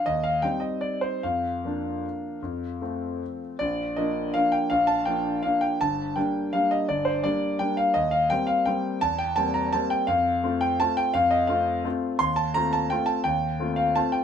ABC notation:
X:1
M:3/4
L:1/8
Q:1/4=166
K:Bb
V:1 name="Grand piano"
e f g e d c | f6- | f4- f z | d2 e2 f g |
f a g2 f g | a2 g2 f e | d c d2 g f | e f g f g2 |
a g a b a g | f3 g a g | f e f2 z2 | c' a b a g a |
g3 f a g |]
V:2 name="Grand piano"
E,,2 [G,CE]4 | F,,2 [F,B,D]4 | F,,2 [F,A,C]4 | B,,,2 [F,B,D]2 [F,B,D]2 |
B,,,2 [F,B,D]2 [F,B,D]2 | G,,,2 [G,B,D]2 [G,B,D]2 | G,,,2 [G,B,D]2 [G,B,D]2 | E,,2 [G,B,C]2 [G,B,C]2 |
=E,,2 [G,B,C]2 [G,B,C]2 | F,,2 [A,CF]2 [A,CF]2 | F,,2 [A,CF]2 [A,CF]2 | E,,2 [A,CF]2 [A,CF]2 |
E,,2 [A,CF]2 [A,CF]2 |]